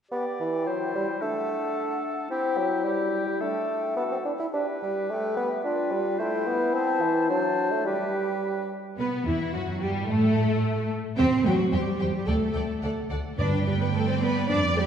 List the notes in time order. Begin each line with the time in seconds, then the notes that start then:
0.12 B3 G4 D5 G5
0.40 E3
0.67 F#3 E4 C5
0.95 G3
1.21 A3 D4 A4 F#5
2.30 C4 E4 G4 G5
2.57 F#3
2.84 G3 G4 G5
3.26 G3
3.41 A3 D4 A4 G5
3.96 B3 F#4 A4 F#5
4.11 C4
4.25 D4 E4
4.40 E4
4.53 D4 G4 B4 G5
4.82 G3
5.10 A3
5.37 B3
5.64 D4 F4 B4 G5
5.91 G3
6.19 A3 E4 C5 G5
6.46 B3
6.74 C4 C5 A5
7.01 E3
7.29 F#3 D4 C5 A5
7.72 A3
7.85 G3 G4 B4 G5
8.98 B2 B3 B4
9.26 E2 E3 E4
9.54 F#2 F#3 F#4
9.81 G2 G3 G4
10.08 A2 A3 A4
11.17 E2 C4 G4 C5 G5
11.44 E2 F#3 F#4 G4 C5 G5
11.72 E2 G3 G4 C5 G5
11.99 E2 G4 C5 G5
12.14 G3 G4
12.26 D2 A3 A4 D5 G5
12.54 D2 A4 D5 G5
12.82 D2 A4 D5 F#5
13.10 D2 A4 D5 F#5
13.38 G2 D4 B4 D5 G5
13.66 G3 G4
13.80 B3 B4
13.93 A3 A4 D5
14.07 C4 C5
14.21 B3 B4
14.48 F2 D4 D5
14.76 G3 G4